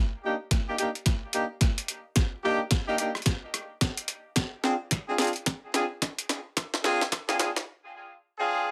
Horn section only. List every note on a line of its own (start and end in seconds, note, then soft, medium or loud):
0.24 0.34 A#3 medium
0.24 0.34 D4 medium
0.24 0.34 D#4 medium
0.24 0.34 G4 medium
0.68 0.74 A#3 medium
0.68 0.74 D4 medium
0.68 0.74 D#4 medium
0.68 0.74 G4 medium
0.79 0.89 A#3 medium
0.79 0.89 D4 medium
0.79 0.89 D#4 medium
0.79 0.89 G4 loud
1.34 1.44 A#3 medium
1.34 1.44 D4 medium
1.34 1.44 D#4 medium
1.34 1.44 G4 medium
2.43 2.59 A#3 loud
2.43 2.59 D4 medium
2.43 2.60 D#4 medium
2.43 2.59 G4 loud
2.87 2.96 A#3 medium
2.87 2.96 D4 medium
2.87 2.96 D#4 medium
2.87 2.96 G4 loud
2.99 3.09 A#3 medium
2.99 3.09 D4 medium
2.99 3.09 D#4 medium
2.99 3.09 G4 medium
4.63 4.74 C4 medium
4.63 4.74 D4 medium
4.63 4.74 F4 medium
4.63 4.74 G#4 medium
5.08 5.15 C4 medium
5.08 5.15 D4 medium
5.08 5.15 F4 medium
5.08 5.15 G#4 medium
5.19 5.29 C4 medium
5.19 5.29 D4 medium
5.19 5.29 F4 medium
5.19 5.29 G#4 loud
5.74 5.84 C4 medium
5.74 5.84 D4 medium
5.74 5.84 F4 medium
5.74 5.84 G#4 medium
6.84 7.00 C4 loud
6.84 7.00 D4 medium
6.84 7.00 F4 medium
6.84 7.00 G#4 loud
7.28 7.37 C4 loud
7.28 7.37 D4 medium
7.28 7.37 F4 medium
7.28 7.37 G#4 loud
7.39 7.49 C4 medium
7.39 7.49 D4 medium
7.39 7.49 F4 medium
7.39 7.49 G#4 medium
8.38 8.71 C4 medium
8.38 8.71 D4 medium
8.38 8.71 F4 medium
8.38 8.71 G#4 loud